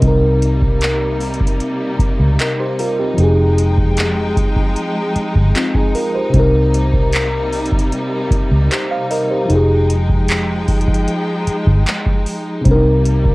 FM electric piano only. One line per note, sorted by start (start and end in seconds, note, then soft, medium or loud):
0.00 2.72 C3 medium
0.00 2.35 C4 medium
0.00 0.20 D#5 medium
0.04 2.36 D#4 medium
0.04 2.38 A#4 medium
2.40 2.59 A#4 medium
2.40 2.58 D#5 medium
2.60 2.78 G4 medium
2.60 2.78 C5 medium
2.79 2.98 F4 medium
2.79 2.98 A#4 medium
2.99 3.37 C4 medium
2.99 3.19 G4 medium
3.14 6.28 F3 medium
3.14 5.50 D#4 medium
3.20 5.52 G4 medium
3.20 5.54 G#4 medium
5.56 5.74 C4 medium
5.56 5.74 F4 medium
5.75 5.94 D#4 medium
5.75 5.94 G#4 medium
5.95 6.14 F4 medium
5.95 6.13 A#4 medium
6.15 6.52 G4 medium
6.15 6.52 C5 medium
6.29 9.43 C3 medium
6.29 9.45 C4 medium
6.36 9.47 D#4 medium
6.36 8.69 A#4 medium
8.72 8.90 G4 medium
8.72 8.90 C5 medium
8.91 9.10 C5 medium
8.91 9.09 F5 medium
9.11 9.30 A#4 medium
9.11 9.29 D#5 medium
9.31 9.51 G4 medium
9.31 9.68 C5 medium
9.45 12.59 F3 medium
9.45 12.61 D#4 medium
9.52 12.63 G4 medium
9.52 12.64 G#4 medium
12.61 13.35 C3 medium
12.61 13.35 C4 medium
12.68 12.73 D4 medium
12.68 13.35 A#4 medium
12.74 13.35 D#4 medium